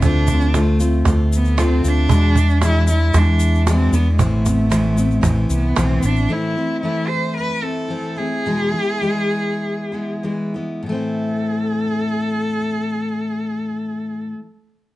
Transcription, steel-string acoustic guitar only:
0.03 0.29 D3 medium
0.03 0.29 A3 medium
0.03 0.29 C4 medium
0.03 0.29 F4 medium
0.30 0.53 A3 soft
0.30 0.54 C4 soft
0.30 0.54 F4 soft
0.54 0.80 D3 medium
0.54 0.80 A3 medium
0.54 0.79 C4 medium
0.54 0.78 F4 medium
0.79 1.05 A3 soft
0.79 1.05 C4 soft
0.79 1.06 F4 medium
1.05 1.56 D3 medium
1.05 1.57 A3 medium
1.05 1.57 C4 medium
1.05 1.57 F4 medium
1.57 1.84 D3 medium
1.57 1.83 A3 medium
1.57 1.83 C4 medium
1.57 1.82 F4 medium
1.83 2.09 A3 soft
1.83 2.09 C4 soft
1.83 2.09 F4 medium
2.08 2.36 E2 medium
2.08 2.36 B2 medium
2.08 2.36 E3 medium
2.08 2.36 G#3 medium
2.08 2.36 D4 medium
2.08 2.35 E4 medium
2.36 2.61 E3 soft
2.36 2.61 G#3 soft
2.36 2.61 D4 soft
2.36 2.61 E4 soft
2.61 2.88 E2 medium
2.61 2.88 B2 medium
2.61 2.89 E3 medium
2.61 2.88 G#3 medium
2.61 2.88 D4 medium
2.61 2.86 E4 medium
2.87 3.13 E3 soft
2.87 3.13 G#3 soft
2.87 3.15 D4 soft
2.87 3.14 E4 soft
3.14 3.68 E3 medium
3.14 3.67 G#3 medium
3.14 3.68 D4 medium
3.14 3.69 E4 medium
3.68 3.94 E2 medium
3.68 3.94 B2 medium
3.68 3.94 E3 medium
3.68 3.93 G#3 medium
3.68 3.92 D4 medium
3.68 3.92 E4 medium
3.93 4.18 E3 soft
3.93 4.19 G#3 soft
3.93 4.19 D4 soft
3.93 4.19 E4 medium
4.18 4.45 A2 medium
4.18 4.45 E3 medium
4.18 4.45 B3 medium
4.18 4.46 C4 medium
4.18 4.44 E4 medium
4.45 4.70 B3 soft
4.45 4.69 C4 soft
4.45 4.70 E4 soft
4.69 4.97 A2 medium
4.69 4.97 E3 medium
4.69 4.97 B3 medium
4.69 4.97 C4 medium
4.69 4.95 E4 medium
4.96 5.22 B3 medium
4.96 5.21 C4 soft
4.96 5.22 E4 soft
5.21 5.75 E3 medium
5.21 5.76 B3 medium
5.21 5.76 C4 medium
5.21 5.76 E4 medium
5.76 6.02 A2 medium
5.76 6.03 E3 medium
5.76 6.03 B3 medium
5.76 6.03 C4 medium
5.76 6.03 E4 medium
6.04 6.30 B3 soft
6.04 6.29 C4 soft
6.04 6.29 E4 medium
6.29 6.55 A2 medium
6.29 6.55 E3 medium
6.29 6.56 A3 medium
6.29 6.56 C4 medium
6.29 6.55 E4 medium
6.56 6.83 A3 soft
6.56 6.82 C4 soft
6.56 6.82 E4 soft
6.83 7.88 E3 soft
6.83 7.63 A3 soft
6.83 7.62 C4 medium
6.83 7.62 E4 medium
7.62 7.89 A3 soft
7.62 7.89 C4 soft
7.62 7.89 E4 soft
7.88 8.16 E3 medium
7.88 8.17 A3 medium
7.88 8.17 C4 medium
7.88 8.15 E4 medium
8.16 8.45 A3 soft
8.16 8.46 C4 soft
8.16 8.45 E4 soft
8.46 8.74 E2 medium
8.46 8.74 B2 medium
8.46 8.72 E3 medium
8.46 8.72 G#3 medium
8.46 8.71 B3 medium
8.46 8.71 E4 medium
8.72 9.00 E3 soft
8.72 9.01 G#3 soft
8.72 9.01 B3 soft
8.72 9.01 E4 soft
9.01 9.91 E3 medium
9.01 9.91 G#3 medium
9.01 9.92 B3 medium
9.01 9.91 E4 medium
9.92 10.22 E3 soft
9.92 10.23 G#3 soft
9.92 10.23 B3 soft
9.92 10.23 E4 soft
10.23 10.55 E3 medium
10.23 10.55 G#3 medium
10.23 10.55 B3 soft
10.23 10.53 E4 medium
10.54 10.85 E3 soft
10.54 10.87 G#3 soft
10.54 10.87 B3 soft
10.54 10.87 E4 soft
10.83 14.33 A2 medium
10.83 14.36 E3 medium
10.89 14.39 A3 medium
10.89 14.42 C4 medium
10.95 14.45 E4 medium

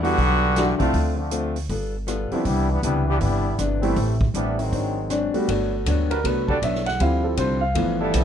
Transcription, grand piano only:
0.03 0.16 E3 medium
0.03 0.16 G3 medium
0.03 0.16 B3 medium
0.03 0.16 D4 medium
0.03 0.17 F#4 medium
0.79 0.92 F3 medium
0.79 0.92 A3 medium
0.79 0.92 C4 medium
0.79 0.92 D4 medium
0.79 0.92 E4 medium
2.32 2.44 G3 medium
2.32 2.44 B3 medium
2.32 2.44 C4 medium
2.32 2.44 D4 medium
2.32 2.44 E4 medium
3.83 3.95 G3 medium
3.83 3.95 A3 medium
3.83 3.95 B3 medium
3.83 3.95 C4 medium
3.83 3.95 E4 medium
5.34 5.46 G3 medium
5.34 5.46 A3 medium
5.34 5.47 B3 medium
5.34 5.47 D4 medium
5.34 5.47 F#4 medium
5.48 6.22 A3 soft
5.48 6.23 B3 soft
5.48 6.23 F#4 medium
6.11 6.24 A#4 medium
6.24 6.45 A3 soft
6.24 6.46 B3 soft
6.24 6.46 F#4 soft
6.24 6.48 B4 medium
6.50 6.62 D5 medium
6.64 6.86 E5 medium
6.86 6.99 F#5 loud
6.99 7.58 F3 soft
6.99 7.59 G3 soft
6.99 7.59 C4 soft
6.99 7.59 E4 medium
6.99 7.24 F5 medium
7.24 7.37 A4 medium
7.39 7.62 C5 medium
7.61 8.09 F5 medium
7.75 8.24 E3 medium
7.75 8.24 F3 soft
7.75 8.24 A3 soft
7.75 8.24 B3 soft

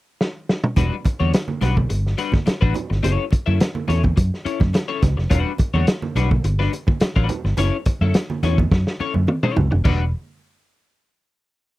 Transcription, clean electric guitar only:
0.77 0.94 G3 medium
0.77 0.95 D4 medium
0.77 0.95 F#4 loud
0.77 0.95 B4 loud
1.05 muted clean electric guitar stroke soft
1.20 1.32 G3 medium
1.20 1.33 D4 medium
1.20 1.33 F#4 medium
1.20 1.32 C#5 medium
1.33 muted clean electric guitar stroke soft
1.61 1.76 G3 medium
1.61 1.76 D4 medium
1.61 1.76 F#4 medium
1.61 1.76 B4 medium
1.77 muted clean electric guitar stroke soft
1.90 muted clean electric guitar stroke soft
2.18 2.32 G3 medium
2.18 2.32 D4 soft
2.18 2.33 F#4 soft
2.18 2.32 B4 medium
2.34 muted clean electric guitar stroke medium
2.46 muted clean electric guitar stroke medium
2.61 2.74 G3 medium
2.61 2.74 D4 medium
2.61 2.74 F#4 medium
2.61 2.74 B4 medium
2.75 muted clean electric guitar stroke soft
2.90 muted clean electric guitar stroke soft
3.03 3.24 C#4 medium
3.03 3.24 E4 medium
3.03 3.24 A4 medium
3.03 3.24 C#5 loud
3.32 muted clean electric guitar stroke soft
3.46 3.59 C#4 medium
3.46 3.59 E4 medium
3.46 3.59 A4 medium
3.46 3.59 E5 medium
3.60 muted clean electric guitar stroke soft
3.88 4.03 C#4 medium
3.88 4.03 E4 medium
3.88 4.03 A4 medium
3.88 4.02 C#5 medium
4.04 muted clean electric guitar stroke medium
4.16 muted clean electric guitar stroke soft
4.45 4.60 C#4 soft
4.45 4.60 E4 medium
4.45 4.59 A4 medium
4.45 4.59 C#5 medium
4.60 muted clean electric guitar stroke medium
4.74 muted clean electric guitar stroke soft
4.88 5.01 C#4 medium
4.88 5.02 E4 medium
4.88 5.02 A4 medium
4.88 5.02 C#5 medium
5.03 muted clean electric guitar stroke soft
5.17 muted clean electric guitar stroke medium
5.30 5.51 G3 medium
5.30 5.51 D4 medium
5.30 5.51 F#4 medium
5.30 5.52 B4 medium
5.60 muted clean electric guitar stroke soft
5.74 5.86 G3 medium
5.74 5.86 D4 medium
5.74 5.86 F#4 medium
5.74 5.87 C#5 medium
5.87 muted clean electric guitar stroke soft
6.16 6.30 G3 medium
6.16 6.30 D4 medium
6.16 6.30 F#4 medium
6.16 6.29 B4 medium
6.30 muted clean electric guitar stroke soft
6.44 muted clean electric guitar stroke soft
6.59 6.72 G3 medium
6.59 6.72 D4 medium
6.59 6.72 F#4 medium
6.59 6.73 B4 medium
6.73 muted clean electric guitar stroke soft
6.88 muted clean electric guitar stroke soft
7.01 muted clean electric guitar stroke soft
7.16 7.28 G3 medium
7.16 7.28 D4 medium
7.16 7.28 F#4 medium
7.16 7.29 B4 medium
7.29 muted clean electric guitar stroke soft
7.45 muted clean electric guitar stroke soft
7.58 7.76 C#4 medium
7.58 7.76 E4 medium
7.58 7.76 A4 medium
7.58 7.76 C#5 loud
7.86 muted clean electric guitar stroke soft
8.01 8.14 C#4 medium
8.01 8.14 E4 medium
8.01 8.14 A4 medium
8.01 8.14 E5 medium
8.15 muted clean electric guitar stroke soft
8.43 8.57 C#4 medium
8.43 8.58 E4 medium
8.43 8.58 A4 medium
8.43 8.58 C#5 medium
8.59 muted clean electric guitar stroke soft
8.72 muted clean electric guitar stroke soft
9.00 9.14 C#4 medium
9.00 9.14 E4 medium
9.00 9.14 A4 medium
9.00 9.14 C#5 medium
9.15 muted clean electric guitar stroke soft
9.28 muted clean electric guitar stroke soft
9.43 9.55 C#4 medium
9.43 9.55 E4 medium
9.43 9.55 A4 medium
9.43 9.56 C#5 medium
9.56 muted clean electric guitar stroke soft
9.71 muted clean electric guitar stroke soft
9.84 10.03 G3 medium
9.84 10.03 D4 medium
9.84 10.03 F#4 loud
9.84 10.03 B4 medium

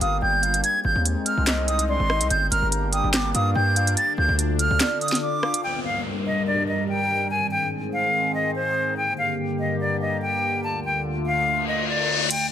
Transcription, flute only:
0.01 0.18 D#6 medium
0.22 0.61 G6 medium
0.64 0.80 G#6 medium
0.85 1.01 G6 medium
1.26 1.65 F6 medium
1.68 1.84 D#6 medium
1.89 2.28 C6 medium
2.30 2.47 G6 medium
2.51 2.68 F6 medium
2.93 3.09 D#6 medium
3.14 3.30 D6 medium
3.34 3.51 D#6 medium
3.55 3.95 G6 medium
3.97 4.13 A6 medium
4.18 4.34 G6 loud
4.60 4.99 F6 medium
5.01 5.18 D#6 medium
5.22 5.61 D6 medium
5.64 5.80 G5 medium
5.85 6.01 F5 medium
6.26 6.43 D#5 medium
6.47 6.63 D5 medium
6.68 6.84 D#5 medium
6.89 7.28 G5 medium
7.30 7.47 G#5 medium
7.51 7.68 G5 medium
7.93 8.32 F5 medium
8.35 8.51 D#5 medium
8.55 8.95 C5 medium
8.97 9.13 G5 medium
9.18 9.34 F5 medium
9.60 9.76 D#5 medium
9.81 9.97 D5 medium
10.01 10.18 D#5 medium
10.22 10.61 G5 medium
10.64 10.80 A5 medium
10.85 11.01 G5 medium
11.26 11.65 F5 medium
11.68 11.84 D#5 medium
11.89 12.28 D5 medium
12.31 12.47 G5 medium

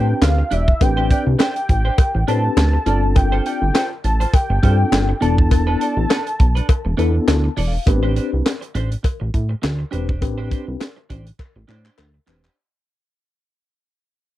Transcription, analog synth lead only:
0.00 0.22 G5 loud
0.23 0.54 F5 loud
0.53 0.84 E5 loud
0.82 1.11 G5 loud
1.11 1.24 G5 loud
1.40 2.24 G5 loud
2.28 3.18 A5 loud
3.16 3.45 G5 loud
3.46 3.73 G5 loud
3.75 3.88 G5 loud
4.05 4.36 A5 loud
4.34 5.22 G5 loud
5.22 7.24 A5 loud

